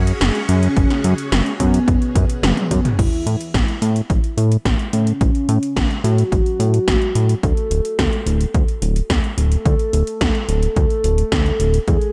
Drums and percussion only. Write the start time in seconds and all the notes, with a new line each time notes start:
0.07 closed hi-hat
0.21 snare, closed hi-hat
0.35 closed hi-hat
0.49 closed hi-hat
0.63 closed hi-hat
0.77 kick, closed hi-hat
0.90 snare, closed hi-hat
1.04 closed hi-hat
1.18 closed hi-hat
1.32 snare, closed hi-hat
1.46 closed hi-hat
1.60 kick, closed hi-hat
1.74 closed hi-hat
1.88 kick, closed hi-hat
2.02 closed hi-hat
2.15 kick, closed hi-hat
2.30 closed hi-hat
2.43 snare, closed hi-hat, high tom
2.57 closed hi-hat, high tom
2.71 kick, closed hi-hat
2.85 closed hi-hat, mid tom
2.99 kick, closed hi-hat, crash
3.13 closed hi-hat
3.27 closed hi-hat
3.41 closed hi-hat
3.54 kick, snare, closed hi-hat
3.68 closed hi-hat
3.82 closed hi-hat
3.96 closed hi-hat
4.10 kick, closed hi-hat
4.24 closed hi-hat
4.38 closed hi-hat
4.52 closed hi-hat
4.65 kick, snare, closed hi-hat
4.79 closed hi-hat
4.93 closed hi-hat
5.07 closed hi-hat
5.21 kick, closed hi-hat
5.35 closed hi-hat
5.49 closed hi-hat
5.63 closed hi-hat
5.76 kick, snare, closed hi-hat
5.91 closed hi-hat
6.04 closed hi-hat
6.18 closed hi-hat
6.32 kick, closed hi-hat
6.46 closed hi-hat
6.60 closed hi-hat
6.74 closed hi-hat
6.88 kick, snare, closed hi-hat
7.02 closed hi-hat
7.15 closed hi-hat
7.29 closed hi-hat
7.43 kick, closed hi-hat
7.57 closed hi-hat
7.71 closed hi-hat
7.85 closed hi-hat
7.99 kick, snare, closed hi-hat
8.13 closed hi-hat
8.27 closed hi-hat
8.41 closed hi-hat
8.54 kick, closed hi-hat
8.68 closed hi-hat
8.82 closed hi-hat
8.96 closed hi-hat
9.10 kick, snare, closed hi-hat
9.24 closed hi-hat
9.38 closed hi-hat
9.52 closed hi-hat
9.65 kick, closed hi-hat
9.79 closed hi-hat
9.93 closed hi-hat
10.07 closed hi-hat
10.21 kick, snare, closed hi-hat
10.35 closed hi-hat
10.49 closed hi-hat
10.63 closed hi-hat
10.76 kick, closed hi-hat
10.90 closed hi-hat
11.04 closed hi-hat
11.18 closed hi-hat
11.32 kick, snare, closed hi-hat
11.46 closed hi-hat
11.60 closed hi-hat
11.74 closed hi-hat
11.88 kick, closed hi-hat
12.01 closed hi-hat